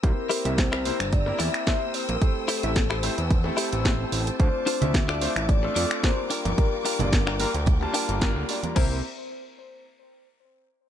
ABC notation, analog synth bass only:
X:1
M:4/4
L:1/16
Q:"Swing 16ths" 1/4=110
K:Cmix
V:1 name="Analog synth bass" clef=bass
C,, z2 C,,3 z G,,,2 z E,, z4 B,,, | z3 A,,,3 z E,,2 z2 A,,,2 z A,,, z | D,, z2 D,,3 z A,,,2 z F,, z4 G,,, | z3 G,,,3 z D,,2 z2 G,,,2 D,, z2 |
C,,2 z12 z2 |]